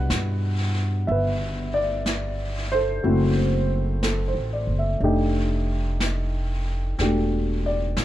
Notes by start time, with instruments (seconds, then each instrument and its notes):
Already playing: upright piano B2 G3 D4 E4 B4 F#5
0.10 upright bass G2, brush sweep, snare, hi-hat pedal
1.07 upright bass G1, upright piano E5, brush sweep
1.12 upright piano B4
1.74 upright piano D5
2.06 brush sweep, snare, hi-hat pedal
2.72 upright piano A4 C5
3.03 upright bass F#1, upright piano A3 C4 E4 F#4, brush sweep
4.03 upright piano A4, brush sweep, snare, hi-hat pedal
4.28 upright piano C5
4.35 upright bass A1
4.53 upright piano D5
4.67 upright bass F#1
4.79 upright piano E5
5.00 upright bass F1, upright piano A3 D4 D#4 G4, brush sweep
6.00 brush sweep, snare, hi-hat pedal
6.99 upright bass E1, upright piano A3 D4 F#4 G4, brush sweep, snare
7.66 upright piano D5
7.97 upright bass D2, brush sweep, snare, hi-hat pedal